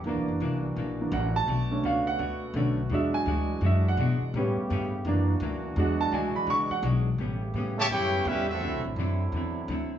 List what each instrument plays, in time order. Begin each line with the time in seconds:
0.04 upright bass D2, hollow-body jazz guitar F#2 E3, trombone section E3 A#3 D4 F#4, grand piano E3 A#3 D4
0.09 hollow-body jazz guitar A#3 D4
0.17 upright bass A#1
0.28 upright bass F#1
0.40 upright bass C2, hollow-body jazz guitar F#2 E3 A#3 D4
0.76 upright bass A#1, hollow-body jazz guitar F#2 E3 A#3 D4
1.00 grand piano E3 A#3 D4
1.11 upright bass A1, hollow-body jazz guitar F#2 E3 A#3 D4, grand piano F#5
1.36 grand piano A5
1.47 upright bass B1, hollow-body jazz guitar B2 A3 D4 F#4, trombone section B2 A3 B3
1.71 grand piano A3 C#4 D4
1.83 upright bass C#2, hollow-body jazz guitar B2 A3 D4 F#4, grand piano F5
2.07 grand piano F#5
2.18 upright bass D2, hollow-body jazz guitar B2 A3 D4 F#4
2.54 upright bass B1, hollow-body jazz guitar B2 A3 D4 F#4, grand piano D3 A3 C#4
2.89 upright bass E2, hollow-body jazz guitar E3 G#3 D4 F#4, trombone section E3 G#3 D4, grand piano F#3 G#3 D4
2.94 grand piano E5
3.14 grand piano G#5
3.26 upright bass D2, hollow-body jazz guitar E3 G#3 D4 F#4
3.61 upright bass F#2, hollow-body jazz guitar E3 G#3 D4 F#4
3.66 grand piano E5
3.88 grand piano F#5
3.97 upright bass B2, hollow-body jazz guitar E3 G#3 D4 F#4
4.21 muted upright bass stroke
4.34 upright bass A2, hollow-body jazz guitar A2 G3 B3 C#4, trombone section C#3 A3 B3 G4, grand piano G3 B3 C#4
4.56 muted upright bass stroke
4.70 upright bass G2, hollow-body jazz guitar A2 G3 B3 C#4
5.05 upright bass F#2, hollow-body jazz guitar F#2 E3 A#3, grand piano E3 A#3 D4, trombone section E3 A#3 F#4
5.09 hollow-body jazz guitar D4, trombone section D4
5.40 upright bass D2, hollow-body jazz guitar F#2 E3 A#3
5.44 hollow-body jazz guitar D4
5.76 upright bass E2, hollow-body jazz guitar E3 G#3 D4 F#4, grand piano F#3 G#3 D4 F#5, trombone section G#3
6.01 grand piano A5
6.11 upright bass D2, hollow-body jazz guitar E3 G#3 D4 F#4, grand piano G#5
6.34 grand piano B5, muted upright bass stroke
6.47 upright bass C#2, hollow-body jazz guitar E3 G#3 D4 F#4, grand piano C#6
6.70 grand piano F#5, muted upright bass stroke
6.83 upright bass B1, hollow-body jazz guitar E3 G#3 D4 F#4
7.18 upright bass A1, hollow-body jazz guitar A2 G3 B3 C#4, trombone section C#3 A3 B3 G4
7.54 upright bass A2, hollow-body jazz guitar A2 G3 B3
7.58 hollow-body jazz guitar C#4
7.77 trombone section C#3 E3 A3, trumpet section G4 C#5 E5 A5
7.90 upright bass F#2, hollow-body jazz guitar A2 G3 B3 C#4, trombone section C#4 E4 G4, trumpet section E4 B4 C#5 G5
8.25 upright bass E2, hollow-body jazz guitar A2 G3 B3, trombone section G3 C#4 E4, trumpet section C#4 G4 B4 E5
8.29 hollow-body jazz guitar C#4
8.50 trombone section A3 C4 E4, trumpet section C4 F#4 A4 E5
8.61 upright bass D2, hollow-body jazz guitar D3 F#3 C4, trombone section D3 F#3 C4 E4
8.66 hollow-body jazz guitar E4
8.73 upright bass C2
8.84 upright bass A1
8.96 upright bass F#2, hollow-body jazz guitar D3 F#3 C4
9.01 hollow-body jazz guitar E4
9.32 upright bass E2, hollow-body jazz guitar D3 F#3
9.37 hollow-body jazz guitar C4 E4
9.68 upright bass D2, hollow-body jazz guitar D3 F#3 C4 E4